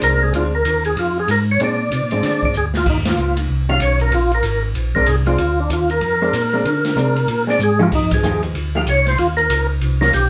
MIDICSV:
0, 0, Header, 1, 5, 480
1, 0, Start_track
1, 0, Tempo, 316122
1, 507, Time_signature, 4, 2, 24, 8
1, 15632, End_track
2, 0, Start_track
2, 0, Title_t, "Tonewheel organ"
2, 0, Program_c, 0, 16
2, 54, Note_on_c, 0, 70, 94
2, 345, Note_on_c, 0, 68, 87
2, 347, Note_off_c, 0, 70, 0
2, 505, Note_off_c, 0, 68, 0
2, 541, Note_on_c, 0, 65, 82
2, 667, Note_off_c, 0, 65, 0
2, 833, Note_on_c, 0, 70, 103
2, 1266, Note_off_c, 0, 70, 0
2, 1301, Note_on_c, 0, 68, 82
2, 1462, Note_off_c, 0, 68, 0
2, 1502, Note_on_c, 0, 65, 80
2, 1790, Note_off_c, 0, 65, 0
2, 1815, Note_on_c, 0, 68, 89
2, 1976, Note_off_c, 0, 68, 0
2, 1989, Note_on_c, 0, 70, 90
2, 2113, Note_off_c, 0, 70, 0
2, 2299, Note_on_c, 0, 73, 93
2, 2442, Note_off_c, 0, 73, 0
2, 2485, Note_on_c, 0, 74, 84
2, 3706, Note_off_c, 0, 74, 0
2, 3724, Note_on_c, 0, 74, 85
2, 3874, Note_off_c, 0, 74, 0
2, 3908, Note_on_c, 0, 68, 77
2, 4032, Note_off_c, 0, 68, 0
2, 4209, Note_on_c, 0, 65, 77
2, 4356, Note_off_c, 0, 65, 0
2, 4399, Note_on_c, 0, 63, 72
2, 4521, Note_off_c, 0, 63, 0
2, 4699, Note_on_c, 0, 65, 64
2, 5118, Note_off_c, 0, 65, 0
2, 5611, Note_on_c, 0, 77, 93
2, 5776, Note_off_c, 0, 77, 0
2, 5801, Note_on_c, 0, 73, 81
2, 6069, Note_off_c, 0, 73, 0
2, 6096, Note_on_c, 0, 70, 82
2, 6275, Note_off_c, 0, 70, 0
2, 6291, Note_on_c, 0, 65, 77
2, 6555, Note_off_c, 0, 65, 0
2, 6599, Note_on_c, 0, 70, 76
2, 7027, Note_off_c, 0, 70, 0
2, 7514, Note_on_c, 0, 70, 81
2, 7695, Note_on_c, 0, 68, 81
2, 7705, Note_off_c, 0, 70, 0
2, 7831, Note_off_c, 0, 68, 0
2, 8001, Note_on_c, 0, 65, 87
2, 8495, Note_off_c, 0, 65, 0
2, 8504, Note_on_c, 0, 62, 65
2, 8662, Note_off_c, 0, 62, 0
2, 8700, Note_on_c, 0, 65, 72
2, 8959, Note_off_c, 0, 65, 0
2, 8969, Note_on_c, 0, 70, 95
2, 11304, Note_off_c, 0, 70, 0
2, 11392, Note_on_c, 0, 74, 94
2, 11546, Note_off_c, 0, 74, 0
2, 11592, Note_on_c, 0, 68, 80
2, 11873, Note_off_c, 0, 68, 0
2, 11886, Note_on_c, 0, 65, 84
2, 11957, Note_off_c, 0, 65, 0
2, 12069, Note_on_c, 0, 63, 74
2, 12324, Note_off_c, 0, 63, 0
2, 12359, Note_on_c, 0, 68, 77
2, 12788, Note_off_c, 0, 68, 0
2, 13309, Note_on_c, 0, 77, 92
2, 13385, Note_off_c, 0, 77, 0
2, 13494, Note_on_c, 0, 73, 86
2, 13757, Note_off_c, 0, 73, 0
2, 13785, Note_on_c, 0, 72, 84
2, 13944, Note_off_c, 0, 72, 0
2, 13954, Note_on_c, 0, 65, 76
2, 14086, Note_off_c, 0, 65, 0
2, 14225, Note_on_c, 0, 70, 91
2, 14680, Note_off_c, 0, 70, 0
2, 15201, Note_on_c, 0, 70, 101
2, 15372, Note_off_c, 0, 70, 0
2, 15399, Note_on_c, 0, 67, 89
2, 15632, Note_off_c, 0, 67, 0
2, 15632, End_track
3, 0, Start_track
3, 0, Title_t, "Hollow-body jazz guitar"
3, 0, Program_c, 1, 26
3, 0, Note_on_c, 1, 56, 62
3, 0, Note_on_c, 1, 60, 61
3, 0, Note_on_c, 1, 62, 62
3, 477, Note_off_c, 1, 56, 0
3, 479, Note_off_c, 1, 60, 0
3, 483, Note_off_c, 1, 62, 0
3, 524, Note_on_c, 1, 56, 53
3, 529, Note_on_c, 1, 60, 50
3, 539, Note_on_c, 1, 62, 52
3, 784, Note_off_c, 1, 56, 0
3, 786, Note_off_c, 1, 60, 0
3, 791, Note_off_c, 1, 62, 0
3, 2443, Note_on_c, 1, 56, 49
3, 2448, Note_on_c, 1, 60, 57
3, 2458, Note_on_c, 1, 62, 58
3, 2702, Note_off_c, 1, 56, 0
3, 2705, Note_off_c, 1, 60, 0
3, 2710, Note_off_c, 1, 62, 0
3, 3220, Note_on_c, 1, 56, 55
3, 3229, Note_on_c, 1, 60, 59
3, 3232, Note_on_c, 1, 62, 72
3, 3836, Note_off_c, 1, 56, 0
3, 3841, Note_off_c, 1, 60, 0
3, 3842, Note_off_c, 1, 62, 0
3, 5604, Note_on_c, 1, 51, 70
3, 5610, Note_on_c, 1, 61, 64
3, 5611, Note_on_c, 1, 55, 62
3, 5617, Note_on_c, 1, 65, 68
3, 6228, Note_off_c, 1, 51, 0
3, 6230, Note_off_c, 1, 61, 0
3, 6231, Note_off_c, 1, 55, 0
3, 6234, Note_off_c, 1, 65, 0
3, 7531, Note_on_c, 1, 60, 60
3, 7532, Note_on_c, 1, 56, 54
3, 7549, Note_on_c, 1, 62, 68
3, 7689, Note_off_c, 1, 56, 0
3, 7689, Note_off_c, 1, 60, 0
3, 7698, Note_off_c, 1, 62, 0
3, 7997, Note_on_c, 1, 56, 59
3, 8004, Note_on_c, 1, 60, 63
3, 8015, Note_on_c, 1, 62, 61
3, 8162, Note_off_c, 1, 56, 0
3, 8166, Note_off_c, 1, 60, 0
3, 8171, Note_off_c, 1, 62, 0
3, 9442, Note_on_c, 1, 56, 69
3, 9449, Note_on_c, 1, 60, 70
3, 9458, Note_on_c, 1, 62, 73
3, 9605, Note_off_c, 1, 56, 0
3, 9608, Note_off_c, 1, 60, 0
3, 9612, Note_off_c, 1, 62, 0
3, 9922, Note_on_c, 1, 56, 63
3, 9930, Note_on_c, 1, 60, 61
3, 9944, Note_on_c, 1, 62, 64
3, 10084, Note_off_c, 1, 56, 0
3, 10089, Note_off_c, 1, 60, 0
3, 10095, Note_off_c, 1, 62, 0
3, 10577, Note_on_c, 1, 56, 49
3, 10582, Note_on_c, 1, 60, 51
3, 10594, Note_on_c, 1, 62, 56
3, 10848, Note_off_c, 1, 56, 0
3, 10850, Note_off_c, 1, 60, 0
3, 10856, Note_off_c, 1, 62, 0
3, 11346, Note_on_c, 1, 56, 55
3, 11363, Note_on_c, 1, 60, 56
3, 11366, Note_on_c, 1, 62, 57
3, 11517, Note_off_c, 1, 56, 0
3, 11525, Note_off_c, 1, 60, 0
3, 11527, Note_off_c, 1, 62, 0
3, 11830, Note_on_c, 1, 53, 58
3, 11833, Note_on_c, 1, 57, 63
3, 11836, Note_on_c, 1, 63, 65
3, 11847, Note_on_c, 1, 67, 68
3, 11999, Note_off_c, 1, 53, 0
3, 12001, Note_off_c, 1, 57, 0
3, 12002, Note_off_c, 1, 63, 0
3, 12008, Note_off_c, 1, 67, 0
3, 12502, Note_on_c, 1, 53, 53
3, 12509, Note_on_c, 1, 57, 58
3, 12520, Note_on_c, 1, 63, 60
3, 12527, Note_on_c, 1, 67, 57
3, 12771, Note_off_c, 1, 53, 0
3, 12774, Note_off_c, 1, 57, 0
3, 12780, Note_off_c, 1, 63, 0
3, 12783, Note_off_c, 1, 67, 0
3, 13288, Note_on_c, 1, 53, 58
3, 13296, Note_on_c, 1, 57, 62
3, 13306, Note_on_c, 1, 63, 61
3, 13315, Note_on_c, 1, 67, 68
3, 13449, Note_off_c, 1, 53, 0
3, 13452, Note_off_c, 1, 57, 0
3, 13458, Note_off_c, 1, 63, 0
3, 13462, Note_off_c, 1, 67, 0
3, 15201, Note_on_c, 1, 51, 61
3, 15204, Note_on_c, 1, 55, 57
3, 15205, Note_on_c, 1, 61, 66
3, 15217, Note_on_c, 1, 65, 64
3, 15366, Note_off_c, 1, 51, 0
3, 15368, Note_off_c, 1, 55, 0
3, 15368, Note_off_c, 1, 61, 0
3, 15375, Note_off_c, 1, 65, 0
3, 15632, End_track
4, 0, Start_track
4, 0, Title_t, "Tonewheel organ"
4, 0, Program_c, 2, 16
4, 29, Note_on_c, 2, 36, 75
4, 493, Note_off_c, 2, 36, 0
4, 500, Note_on_c, 2, 38, 79
4, 969, Note_off_c, 2, 38, 0
4, 983, Note_on_c, 2, 39, 75
4, 1450, Note_off_c, 2, 39, 0
4, 1464, Note_on_c, 2, 41, 74
4, 1930, Note_off_c, 2, 41, 0
4, 1934, Note_on_c, 2, 44, 78
4, 2405, Note_off_c, 2, 44, 0
4, 2424, Note_on_c, 2, 46, 79
4, 2890, Note_off_c, 2, 46, 0
4, 2910, Note_on_c, 2, 48, 74
4, 3062, Note_off_c, 2, 48, 0
4, 3075, Note_on_c, 2, 46, 53
4, 3230, Note_off_c, 2, 46, 0
4, 3230, Note_on_c, 2, 44, 56
4, 3376, Note_off_c, 2, 44, 0
4, 3381, Note_on_c, 2, 50, 74
4, 3659, Note_off_c, 2, 50, 0
4, 3678, Note_on_c, 2, 50, 34
4, 3770, Note_off_c, 2, 50, 0
4, 3877, Note_on_c, 2, 38, 70
4, 4336, Note_off_c, 2, 38, 0
4, 4338, Note_on_c, 2, 39, 81
4, 4806, Note_off_c, 2, 39, 0
4, 4807, Note_on_c, 2, 37, 75
4, 5280, Note_off_c, 2, 37, 0
4, 5296, Note_on_c, 2, 36, 66
4, 5765, Note_off_c, 2, 36, 0
4, 5780, Note_on_c, 2, 35, 82
4, 6245, Note_on_c, 2, 34, 83
4, 6247, Note_off_c, 2, 35, 0
4, 6719, Note_off_c, 2, 34, 0
4, 6719, Note_on_c, 2, 32, 83
4, 7196, Note_off_c, 2, 32, 0
4, 7208, Note_on_c, 2, 34, 72
4, 7680, Note_off_c, 2, 34, 0
4, 7698, Note_on_c, 2, 36, 78
4, 8166, Note_off_c, 2, 36, 0
4, 8167, Note_on_c, 2, 38, 85
4, 8640, Note_off_c, 2, 38, 0
4, 8650, Note_on_c, 2, 39, 84
4, 9121, Note_off_c, 2, 39, 0
4, 9136, Note_on_c, 2, 41, 76
4, 9604, Note_off_c, 2, 41, 0
4, 9604, Note_on_c, 2, 46, 83
4, 10078, Note_off_c, 2, 46, 0
4, 10096, Note_on_c, 2, 50, 83
4, 10563, Note_on_c, 2, 48, 80
4, 10564, Note_off_c, 2, 50, 0
4, 11038, Note_off_c, 2, 48, 0
4, 11045, Note_on_c, 2, 46, 71
4, 11519, Note_off_c, 2, 46, 0
4, 11526, Note_on_c, 2, 44, 76
4, 11999, Note_off_c, 2, 44, 0
4, 12023, Note_on_c, 2, 41, 80
4, 12488, Note_off_c, 2, 41, 0
4, 12490, Note_on_c, 2, 39, 74
4, 12962, Note_off_c, 2, 39, 0
4, 12965, Note_on_c, 2, 38, 69
4, 13440, Note_off_c, 2, 38, 0
4, 13456, Note_on_c, 2, 36, 76
4, 13926, Note_off_c, 2, 36, 0
4, 13952, Note_on_c, 2, 39, 75
4, 14412, Note_on_c, 2, 37, 78
4, 14415, Note_off_c, 2, 39, 0
4, 14884, Note_off_c, 2, 37, 0
4, 14884, Note_on_c, 2, 36, 76
4, 15360, Note_off_c, 2, 36, 0
4, 15371, Note_on_c, 2, 35, 85
4, 15632, Note_off_c, 2, 35, 0
4, 15632, End_track
5, 0, Start_track
5, 0, Title_t, "Drums"
5, 23, Note_on_c, 9, 44, 52
5, 23, Note_on_c, 9, 51, 66
5, 175, Note_off_c, 9, 44, 0
5, 175, Note_off_c, 9, 51, 0
5, 508, Note_on_c, 9, 51, 56
5, 660, Note_off_c, 9, 51, 0
5, 987, Note_on_c, 9, 44, 50
5, 987, Note_on_c, 9, 51, 67
5, 1138, Note_off_c, 9, 44, 0
5, 1138, Note_off_c, 9, 51, 0
5, 1284, Note_on_c, 9, 51, 43
5, 1436, Note_off_c, 9, 51, 0
5, 1468, Note_on_c, 9, 51, 62
5, 1620, Note_off_c, 9, 51, 0
5, 1944, Note_on_c, 9, 44, 57
5, 1944, Note_on_c, 9, 51, 57
5, 2096, Note_off_c, 9, 44, 0
5, 2096, Note_off_c, 9, 51, 0
5, 2426, Note_on_c, 9, 51, 53
5, 2578, Note_off_c, 9, 51, 0
5, 2909, Note_on_c, 9, 44, 52
5, 2909, Note_on_c, 9, 51, 63
5, 3061, Note_off_c, 9, 44, 0
5, 3061, Note_off_c, 9, 51, 0
5, 3201, Note_on_c, 9, 51, 43
5, 3353, Note_off_c, 9, 51, 0
5, 3385, Note_on_c, 9, 51, 57
5, 3388, Note_on_c, 9, 38, 36
5, 3537, Note_off_c, 9, 51, 0
5, 3540, Note_off_c, 9, 38, 0
5, 3683, Note_on_c, 9, 36, 54
5, 3834, Note_off_c, 9, 36, 0
5, 3853, Note_on_c, 9, 44, 55
5, 4005, Note_off_c, 9, 44, 0
5, 4158, Note_on_c, 9, 38, 53
5, 4310, Note_off_c, 9, 38, 0
5, 4338, Note_on_c, 9, 49, 72
5, 4343, Note_on_c, 9, 36, 67
5, 4490, Note_off_c, 9, 49, 0
5, 4494, Note_off_c, 9, 36, 0
5, 4635, Note_on_c, 9, 51, 64
5, 4638, Note_on_c, 9, 38, 69
5, 4787, Note_off_c, 9, 51, 0
5, 4790, Note_off_c, 9, 38, 0
5, 4809, Note_on_c, 9, 44, 48
5, 4961, Note_off_c, 9, 44, 0
5, 5112, Note_on_c, 9, 51, 62
5, 5264, Note_off_c, 9, 51, 0
5, 5768, Note_on_c, 9, 44, 53
5, 5768, Note_on_c, 9, 51, 67
5, 5919, Note_off_c, 9, 44, 0
5, 5919, Note_off_c, 9, 51, 0
5, 6067, Note_on_c, 9, 51, 42
5, 6219, Note_off_c, 9, 51, 0
5, 6251, Note_on_c, 9, 51, 60
5, 6403, Note_off_c, 9, 51, 0
5, 6550, Note_on_c, 9, 51, 41
5, 6702, Note_off_c, 9, 51, 0
5, 6720, Note_on_c, 9, 44, 48
5, 6720, Note_on_c, 9, 51, 69
5, 6872, Note_off_c, 9, 44, 0
5, 6872, Note_off_c, 9, 51, 0
5, 7212, Note_on_c, 9, 51, 53
5, 7364, Note_off_c, 9, 51, 0
5, 7512, Note_on_c, 9, 36, 49
5, 7664, Note_off_c, 9, 36, 0
5, 7688, Note_on_c, 9, 44, 54
5, 7688, Note_on_c, 9, 51, 64
5, 7840, Note_off_c, 9, 44, 0
5, 7840, Note_off_c, 9, 51, 0
5, 7987, Note_on_c, 9, 51, 37
5, 8139, Note_off_c, 9, 51, 0
5, 8173, Note_on_c, 9, 51, 58
5, 8325, Note_off_c, 9, 51, 0
5, 8654, Note_on_c, 9, 44, 55
5, 8654, Note_on_c, 9, 51, 66
5, 8806, Note_off_c, 9, 44, 0
5, 8806, Note_off_c, 9, 51, 0
5, 8954, Note_on_c, 9, 51, 44
5, 9105, Note_off_c, 9, 51, 0
5, 9127, Note_on_c, 9, 51, 54
5, 9279, Note_off_c, 9, 51, 0
5, 9616, Note_on_c, 9, 44, 49
5, 9616, Note_on_c, 9, 51, 64
5, 9767, Note_off_c, 9, 44, 0
5, 9767, Note_off_c, 9, 51, 0
5, 10101, Note_on_c, 9, 51, 58
5, 10253, Note_off_c, 9, 51, 0
5, 10394, Note_on_c, 9, 51, 57
5, 10397, Note_on_c, 9, 38, 42
5, 10546, Note_off_c, 9, 51, 0
5, 10549, Note_off_c, 9, 38, 0
5, 10578, Note_on_c, 9, 44, 47
5, 10730, Note_off_c, 9, 44, 0
5, 10875, Note_on_c, 9, 51, 43
5, 11027, Note_off_c, 9, 51, 0
5, 11054, Note_on_c, 9, 51, 63
5, 11205, Note_off_c, 9, 51, 0
5, 11363, Note_on_c, 9, 38, 31
5, 11515, Note_off_c, 9, 38, 0
5, 11533, Note_on_c, 9, 44, 52
5, 11685, Note_off_c, 9, 44, 0
5, 11841, Note_on_c, 9, 47, 53
5, 11992, Note_off_c, 9, 47, 0
5, 12022, Note_on_c, 9, 49, 68
5, 12024, Note_on_c, 9, 36, 67
5, 12173, Note_off_c, 9, 49, 0
5, 12176, Note_off_c, 9, 36, 0
5, 12317, Note_on_c, 9, 51, 68
5, 12321, Note_on_c, 9, 36, 73
5, 12469, Note_off_c, 9, 51, 0
5, 12473, Note_off_c, 9, 36, 0
5, 12500, Note_on_c, 9, 44, 55
5, 12652, Note_off_c, 9, 44, 0
5, 12794, Note_on_c, 9, 51, 42
5, 12946, Note_off_c, 9, 51, 0
5, 12980, Note_on_c, 9, 51, 61
5, 13132, Note_off_c, 9, 51, 0
5, 13463, Note_on_c, 9, 44, 62
5, 13463, Note_on_c, 9, 51, 63
5, 13615, Note_off_c, 9, 44, 0
5, 13615, Note_off_c, 9, 51, 0
5, 13762, Note_on_c, 9, 51, 41
5, 13765, Note_on_c, 9, 38, 33
5, 13914, Note_off_c, 9, 51, 0
5, 13917, Note_off_c, 9, 38, 0
5, 13941, Note_on_c, 9, 51, 56
5, 14093, Note_off_c, 9, 51, 0
5, 14244, Note_on_c, 9, 51, 41
5, 14396, Note_off_c, 9, 51, 0
5, 14422, Note_on_c, 9, 44, 53
5, 14422, Note_on_c, 9, 51, 70
5, 14574, Note_off_c, 9, 44, 0
5, 14574, Note_off_c, 9, 51, 0
5, 14900, Note_on_c, 9, 51, 59
5, 15052, Note_off_c, 9, 51, 0
5, 15203, Note_on_c, 9, 38, 39
5, 15355, Note_off_c, 9, 38, 0
5, 15383, Note_on_c, 9, 44, 55
5, 15383, Note_on_c, 9, 51, 60
5, 15535, Note_off_c, 9, 44, 0
5, 15535, Note_off_c, 9, 51, 0
5, 15632, End_track
0, 0, End_of_file